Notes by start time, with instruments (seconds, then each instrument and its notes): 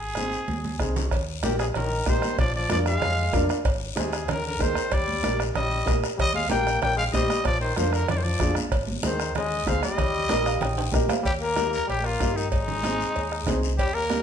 Already playing: fingered electric bass G#1, trumpet G#4
0.15 upright piano C4 D#4 G#4, bombo rim, high conga, short guiro
0.32 short guiro
0.48 fingered electric bass D#2, high conga, long guiro
0.65 high conga
0.79 fingered electric bass C2, upright piano C4 D#4 G#4, bombo low, bombo rim, short guiro
0.96 low conga, short guiro
1.11 fingered electric bass D#2, bombo low, bombo rim, cowbell, high conga, long guiro
1.43 fingered electric bass A#1, trombone A#2, upright piano D#4 G4 A#4, trumpet G4, bombo rim, high conga, short guiro
1.58 trombone C3, trumpet G#4, bombo rim, short guiro
1.74 fingered electric bass A#1, trombone D#3, trumpet A#4, bombo rim, cowbell, high conga, low conga, long guiro
2.06 fingered electric bass A#1, trombone D#3, upright piano D#4 G4 A#4, trumpet C5, bombo low, bombo rim, high conga, low timbale, short guiro
2.22 bombo rim, high conga, short guiro
2.38 fingered electric bass A#1, trombone F3, trumpet D5, bombo low, bombo rim, cowbell, high conga, low conga, long guiro
2.56 trombone F3, trumpet D5
2.70 fingered electric bass F2, trombone F3, upright piano D4 F4 A#4, trumpet D5, bombo rim, high conga, short guiro
2.86 trombone G#3, trumpet F5, bombo rim, short guiro
3.02 fingered electric bass F2, bombo rim, cowbell, high conga, low conga, long guiro
3.33 fingered electric bass F2, upright piano D4 F4 A#4, bombo low, bombo rim, high conga, low conga, low timbale, short guiro
3.49 bombo rim, short guiro
3.65 fingered electric bass G#1, bombo low, bombo rim, cowbell, high conga, long guiro
3.95 fingered electric bass D#2, trombone C3, upright piano D#4 G#4 C5, trumpet G#4, bombo rim, high conga, short guiro
4.13 bombo rim, short guiro
4.28 fingered electric bass D#2, trombone D#3, trumpet A#4, bombo rim, cowbell, high conga, low conga, long guiro
4.45 trombone D3, trumpet A#4
4.59 fingered electric bass D#2, trombone D#3, upright piano D#4 G#4 A#4, trumpet C5, bombo low, bombo rim, high conga, short guiro
4.75 bombo rim, short guiro
4.91 fingered electric bass D#2, trombone G3, trumpet D5, bombo low, bombo rim, cowbell, high conga, long guiro
5.08 high conga
5.23 fingered electric bass A#1, upright piano D#4 G4 A#4, bombo rim, high conga, short guiro
5.40 bombo rim, short guiro
5.55 fingered electric bass A#1, trombone G3, trumpet D#5, bombo rim, cowbell, high conga, low conga, long guiro
5.86 fingered electric bass A#1, upright piano D#4 G4 A#4, bombo low, bombo rim, high conga, low timbale, short guiro
6.04 bombo rim, short guiro
6.17 fingered electric bass D#2, trombone G3, trumpet D#5, bombo low, bombo rim, cowbell, high conga, long guiro
6.34 trombone G#3, trumpet F5, high conga
6.49 fingered electric bass A#1, trombone A#3, upright piano D#4 G4 A#4, trumpet G5, bombo rim, high conga, short guiro
6.67 bombo rim, short guiro
6.82 fingered electric bass A#1, trombone A#3, trumpet G5, bombo rim, cowbell, high conga, low conga, long guiro
6.96 trombone G#3, trumpet F5
7.12 fingered electric bass A#1, trombone G3, upright piano D#4 G4 C5, trumpet D#5, bombo low, bombo rim, high conga, low timbale, short guiro
7.30 bombo rim, high conga, short guiro
7.44 fingered electric bass A#1, trombone F3, trumpet D5, bombo low, bombo rim, cowbell, high conga, long guiro
7.60 trombone D#3, trumpet C5
7.76 fingered electric bass F2, trombone F3, upright piano D4 F4 A#4, trumpet C5, bombo rim, high conga, short guiro
7.93 trombone D3, trumpet A#4, bombo rim, short guiro
8.08 fingered electric bass F2, trombone F3, trumpet D5, bombo rim, cowbell, high conga, low conga, long guiro
8.15 trombone D#3, trumpet C5
8.22 trombone F3, trumpet D5
8.39 fingered electric bass F2, upright piano D4 F4 G#4, bombo low, bombo rim, high conga, low conga, low timbale, short guiro
8.55 bombo rim, high conga, short guiro
8.72 fingered electric bass G#1, bombo low, bombo rim, cowbell, high conga, long guiro
8.88 high conga
9.03 fingered electric bass D#2, trombone D#3, upright piano D#4 G#4 C5, trumpet C5, bombo rim, high conga, short guiro
9.20 bombo rim, short guiro
9.35 fingered electric bass D#2, trombone G#3, trumpet D#5, bombo rim, cowbell, high conga, low conga, long guiro
9.66 fingered electric bass D2, trombone G#3, upright piano D#4 G#4 C5, trumpet F5, bombo low, bombo rim, high conga, short guiro
9.82 trombone G3, trumpet D#5, bombo rim, high conga, short guiro
9.98 fingered electric bass D#2, bombo low, bombo rim, cowbell, high conga, low conga, long guiro
10.29 fingered electric bass A#1, upright piano D#4 G4 A#4, bombo rim, high conga, short guiro
10.46 upright piano F5, bombo rim, short guiro
10.61 fingered electric bass A#1, upright piano G5, bombo rim, cowbell, high conga, low conga, long guiro
10.78 upright piano G5, high timbale
10.92 fingered electric bass A#1, upright piano D#4 G4 A#4 D#5, bombo low, bombo rim, high conga, low conga, short guiro
11.09 upright piano F5, bombo rim, high conga, low timbale, short guiro
11.23 fingered electric bass D#2, trombone G3, trumpet G4, bombo low, cowbell, high conga, long guiro
11.39 trombone A#3, trumpet A#4
11.56 upright piano D#4 G4 A#4, bombo rim, cowbell, high conga, short guiro
11.70 trombone A#3, trumpet A#4, short guiro
11.87 fingered electric bass A#1, trombone G3, trumpet G4, cowbell, high conga, long guiro
12.02 trombone A#3, trumpet F4, bombo rim
12.20 fingered electric bass G2, upright piano D#4 G4 A#4, bombo low, bombo rim, cowbell, high conga, low timbale, short guiro
12.34 trombone D#3, trumpet D#4, short guiro
12.51 fingered electric bass G#1, trombone G#3, trumpet D#4, bombo low, cowbell, high conga, long guiro
12.68 low conga
12.83 upright piano C4 D#4 G#4, bombo rim, cowbell, high conga, short guiro
13.01 short guiro
13.15 fingered electric bass D#2, cowbell, high conga, long guiro
13.32 bombo rim
13.47 fingered electric bass C2, upright piano C4 D#4 G#4, bombo low, bombo rim, cowbell, high conga, low conga, low timbale, short guiro
13.63 short guiro
13.78 fingered electric bass D#2, trombone G3, trumpet G4, bombo low, cowbell, high conga, long guiro
13.93 trombone A#3, trumpet A#4
14.09 upright piano A#3 D#4 G4, bombo rim, cowbell, high conga, short guiro